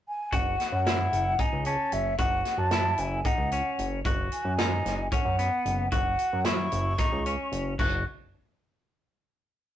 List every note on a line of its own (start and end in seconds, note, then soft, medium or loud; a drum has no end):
0.09 0.36 G#5 medium
0.32 0.56 F#1 medium
0.32 0.79 F#4 medium
0.32 0.73 F#5 medium
0.32 kick medium
0.32 closed hi-hat medium
0.60 snare soft
0.60 closed hi-hat soft
0.72 1.08 F#2 medium
0.72 1.42 F#5 medium
0.87 1.33 E4 medium
0.87 snare medium
0.87 closed hi-hat medium
1.12 1.36 F#1 medium
1.12 closed hi-hat soft
1.39 1.63 D#4 medium
1.39 1.68 G#5 medium
1.39 kick medium
1.39 closed hi-hat medium
1.53 1.76 C#2 medium
1.65 2.13 C#4 medium
1.65 1.94 A5 medium
1.65 closed hi-hat medium
1.92 2.16 F#1 medium
1.92 2.18 E5 medium
1.92 closed hi-hat soft
2.18 2.42 F#1 medium
2.18 2.66 F#4 medium
2.18 2.60 F#5 medium
2.18 kick medium
2.18 closed hi-hat medium
2.45 snare soft
2.45 closed hi-hat soft
2.58 2.94 F#2 medium
2.58 3.01 A5 medium
2.71 3.19 E4 medium
2.71 snare medium
2.71 closed hi-hat medium
2.98 3.22 F#1 loud
2.98 3.28 G#5 medium
2.98 closed hi-hat soft
3.25 3.49 D#4 medium
3.25 3.86 F#5 medium
3.25 kick medium
3.25 closed hi-hat medium
3.38 3.62 C#2 medium
3.52 3.99 C#4 medium
3.52 closed hi-hat soft
3.79 4.02 F#1 medium
3.79 closed hi-hat soft
4.05 4.29 F#1 medium
4.05 4.52 F#4 medium
4.05 kick medium
4.05 closed hi-hat medium
4.32 5.08 G#5 medium
4.32 closed hi-hat soft
4.45 4.80 F#2 medium
4.59 5.06 D#4 medium
4.59 snare loud
4.59 closed hi-hat medium
4.85 5.09 F#1 medium
4.85 snare soft
4.85 closed hi-hat medium
5.12 5.36 C#4 medium
5.12 5.89 F#5 medium
5.12 kick medium
5.12 closed hi-hat medium
5.25 5.49 F#2 medium
5.39 5.86 B3 medium
5.39 closed hi-hat medium
5.66 5.89 F#1 medium
5.66 closed hi-hat medium
5.92 6.16 F#1 medium
5.92 6.39 F#4 medium
5.92 6.47 F#5 medium
5.92 kick medium
5.92 closed hi-hat medium
6.19 closed hi-hat soft
6.33 6.68 F#2 medium
6.45 6.93 E4 medium
6.45 7.52 C#6 medium
6.45 snare loud
6.45 closed hi-hat medium
6.72 6.96 F#1 medium
6.72 closed hi-hat medium
6.98 7.22 D#4 medium
6.98 kick medium
6.98 snare soft
6.98 closed hi-hat medium
7.12 7.36 C#2 medium
7.26 7.73 C#4 medium
7.26 closed hi-hat medium
7.52 7.76 F#1 medium
7.52 closed hi-hat soft
7.79 8.04 F#1 medium
7.79 8.04 F#4 medium
7.79 8.04 F#6 medium
7.79 kick medium
7.79 crash medium